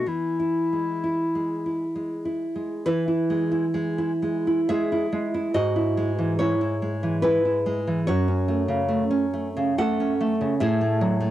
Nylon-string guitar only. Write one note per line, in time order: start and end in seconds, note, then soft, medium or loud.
0.06 2.82 E3 soft
0.39 0.91 E4 soft
0.73 1.23 G#3 soft
1.04 1.53 E4 soft
1.35 1.84 G#3 soft
1.66 2.14 E4 soft
1.95 2.44 G#3 soft
2.25 2.74 E4 soft
2.56 2.85 G#3 soft
2.86 5.52 E3 medium
2.86 3.07 E4 medium
2.86 4.64 B4 medium
3.08 3.43 E4 soft
3.30 3.65 G#3 soft
3.51 3.87 E4 medium
3.74 4.11 G#3 soft
3.98 4.36 E4 soft
4.22 4.60 G#3 soft
4.47 4.83 E4 soft
4.69 5.04 G#3 medium
4.69 5.52 G#4 medium
4.69 5.53 E5 medium
4.92 5.26 E4 soft
5.13 5.47 G#3 medium
5.34 5.56 E4 medium
5.54 8.04 G#2 medium
5.54 6.37 F#4 medium
5.54 6.37 D#5 medium
5.76 6.11 E4 soft
5.97 6.32 G#3 soft
6.19 6.53 E3 medium
6.39 6.74 G#3 medium
6.39 6.60 E4 medium
6.39 7.21 C#5 medium
6.61 6.95 E4 medium
6.82 7.16 G#3 soft
7.03 7.37 E3 medium
7.22 7.58 G#3 medium
7.22 7.44 E4 medium
7.22 8.03 B4 medium
7.45 7.79 E4 soft
7.66 7.99 G#3 medium
7.87 8.08 E3 medium
8.07 10.40 F#2 medium
8.07 9.75 F#4 medium
8.07 9.75 C#5 medium
8.28 8.61 C#4 medium
8.48 8.81 A3 medium
8.68 9.02 C#3 medium
8.89 9.24 A3 medium
9.11 9.48 C#4 medium
9.34 9.70 A3 medium
9.57 9.78 C#3 medium
9.78 10.13 A3 medium
9.78 10.57 A4 medium
9.78 10.58 F#5 loud
10.00 10.33 C#4 medium
10.21 10.53 A3 medium
10.41 10.61 C#3 medium
10.60 11.31 A2 medium
10.60 11.31 G#4 medium
10.60 11.31 E5 loud
10.81 11.13 A3 medium
11.01 11.31 F#3 medium
11.21 11.31 A3 medium